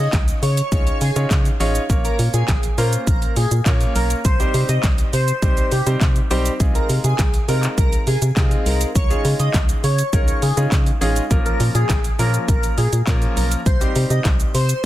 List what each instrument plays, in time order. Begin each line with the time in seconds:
Already playing: grand piano C#4 D#4 F4 G#4 C#5
0.00 digital synth lead D#5
0.13 fm bass C#2, kick, snare, clap, closed hi-hat, shaker
0.28 closed hi-hat, shaker
0.42 fm bass C#3, digital synth lead C#5, open hi-hat, shaker
0.57 closed hi-hat, shaker
0.72 fm bass C#2, grand piano C#4 D#4 F4 G#4 C#5, digital synth lead C#5, kick, closed hi-hat, shaker
0.87 closed hi-hat, shaker
1.01 fm bass C#3, digital synth lead G#4, open hi-hat, shaker
1.16 fm bass C#3, grand piano C#4 D#4 F4 G#4 C#5, closed hi-hat, shaker
1.31 fm bass C#3, kick, snare, clap, closed hi-hat, shaker
1.45 closed hi-hat, shaker
1.60 fm bass A1, grand piano C#4 D#4 F4 G#4 C#5, open hi-hat, shaker
1.75 closed hi-hat, shaker
1.89 fm bass A#1, grand piano A#3 C#4 F4 A#4 C#5, kick, closed hi-hat, shaker
2.04 digital synth lead A#4, closed hi-hat, shaker
2.19 fm bass A#2, open hi-hat, shaker
2.34 fm bass A#2, digital synth lead G#4, closed hi-hat, shaker
2.48 fm bass A#1, kick, snare, clap, closed hi-hat, shaker
2.63 closed hi-hat, shaker
2.78 fm bass A#2, grand piano A#3 C#4 F4 A#4 C5, digital synth lead A#4, open hi-hat, shaker
2.93 closed hi-hat, shaker
3.07 fm bass A#1, digital synth lead A#4, kick, closed hi-hat, shaker
3.22 closed hi-hat, shaker
3.36 fm bass A#2, digital synth lead G#4, open hi-hat, shaker
3.51 fm bass A#2, closed hi-hat, shaker
3.66 fm bass A#2, grand piano A#3 C#4 F4 A#4 C#5, kick, snare, clap, closed hi-hat, shaker
3.81 closed hi-hat, shaker
3.95 fm bass B1, digital synth lead A#4, open hi-hat, shaker
4.10 closed hi-hat, shaker
4.25 fm bass C2, digital synth lead C5, kick, closed hi-hat, shaker
4.39 grand piano G3 C4 D#4 G4 C5, closed hi-hat, shaker
4.54 fm bass C3, open hi-hat, shaker
4.69 fm bass C3, digital synth lead D#5, closed hi-hat, shaker
4.83 fm bass C2, kick, snare, clap, closed hi-hat, shaker
4.98 closed hi-hat, shaker
5.13 fm bass C3, digital synth lead C5, open hi-hat, shaker
5.28 closed hi-hat, shaker
5.42 fm bass C2, grand piano G3 C4 D#4 G4 C5, digital synth lead C5, kick, closed hi-hat, shaker
5.57 closed hi-hat, shaker
5.72 fm bass C3, digital synth lead G4, open hi-hat, shaker
5.86 fm bass C3, grand piano G3 C4 D#4 G4 C5, closed hi-hat, shaker
6.01 fm bass C3, kick, snare, clap, closed hi-hat, shaker
6.16 closed hi-hat, shaker
6.30 fm bass B1, grand piano G3 C4 D#4 G4 C5, open hi-hat, shaker
6.46 closed hi-hat, shaker
6.60 fm bass C2, grand piano G#3 C4 D#4 F4 G#4, kick, closed hi-hat, shaker
6.75 digital synth lead A#4, closed hi-hat, shaker
6.89 fm bass C3, open hi-hat, shaker
7.04 fm bass C3, digital synth lead G#4, closed hi-hat, shaker
7.19 fm bass C2, kick, snare, clap, closed hi-hat, shaker
7.34 closed hi-hat, shaker
7.48 fm bass C3, grand piano G#3 C4 D#4 F4 A#4, digital synth lead A#4, open hi-hat, shaker
7.63 clap, closed hi-hat, shaker
7.78 fm bass C2, digital synth lead A#4, kick, closed hi-hat, shaker
7.93 closed hi-hat, shaker
8.07 fm bass C3, digital synth lead G#4, open hi-hat, shaker
8.22 fm bass C3, closed hi-hat, shaker
8.36 fm bass C3, grand piano G#3 C4 D#4 F4 G#4, kick, snare, clap, closed hi-hat, shaker
8.51 closed hi-hat, shaker
8.66 fm bass C2, digital synth lead A#4, open hi-hat, shaker
8.81 closed hi-hat, shaker
8.95 fm bass C#2, digital synth lead C#5, kick, closed hi-hat, shaker
9.10 grand piano G#3 C#4 D#4 F4 G#4, closed hi-hat, shaker
9.25 fm bass C#3, open hi-hat, shaker
9.39 fm bass C#3, digital synth lead D#5, closed hi-hat, shaker
9.54 fm bass C#2, kick, snare, clap, closed hi-hat, shaker
9.69 closed hi-hat, shaker
9.84 fm bass C#3, digital synth lead C#5, open hi-hat, shaker
9.98 closed hi-hat, shaker
10.13 fm bass C#2, grand piano G#3 C#4 D#4 F4 A#4, digital synth lead C#5, kick, closed hi-hat, shaker
10.28 closed hi-hat, shaker
10.42 fm bass C#3, digital synth lead G#4, open hi-hat, shaker
10.57 fm bass C#3, grand piano G#3 C#4 D#4 F4 G#4, closed hi-hat, shaker
10.72 fm bass C#3, kick, snare, clap, closed hi-hat, shaker
10.86 closed hi-hat, shaker
11.01 fm bass A1, grand piano G#3 C#4 D#4 F4 G#4, open hi-hat, shaker
11.16 closed hi-hat, shaker
11.30 fm bass A#1, grand piano F3 A#3 C#4 F4 A#4, kick, closed hi-hat, shaker
11.45 digital synth lead A#4, closed hi-hat, shaker
11.60 fm bass A#2, open hi-hat, shaker
11.75 fm bass A#2, digital synth lead G#4, closed hi-hat, shaker
11.90 fm bass A#1, kick, snare, clap, closed hi-hat, shaker
12.04 closed hi-hat, shaker
12.19 fm bass A#2, grand piano F3 A#3 C#4 F4 A#4, digital synth lead A#4, open hi-hat, shaker
12.34 closed hi-hat, shaker
12.48 fm bass A#1, digital synth lead A#4, kick, closed hi-hat, shaker
12.63 closed hi-hat, shaker
12.78 fm bass A#2, digital synth lead G#4, open hi-hat, shaker
12.93 fm bass A#2, closed hi-hat, shaker
13.07 fm bass A#2, grand piano F3 A#3 C#4 F4 A#4, kick, snare, clap, closed hi-hat, shaker
13.22 closed hi-hat, shaker
13.37 fm bass B1, digital synth lead A#4, open hi-hat, shaker
13.51 closed hi-hat, shaker
13.66 fm bass C2, digital synth lead C5, kick, closed hi-hat, shaker
13.81 grand piano G3 C4 D#4 G4 C5, closed hi-hat, shaker
13.96 fm bass C3, open hi-hat, shaker
14.10 fm bass C3, digital synth lead D#5, closed hi-hat, shaker
14.25 fm bass C2, kick, snare, clap, closed hi-hat, shaker
14.40 closed hi-hat, shaker
14.54 fm bass C3, digital synth lead C5, open hi-hat, shaker
14.69 closed hi-hat, shaker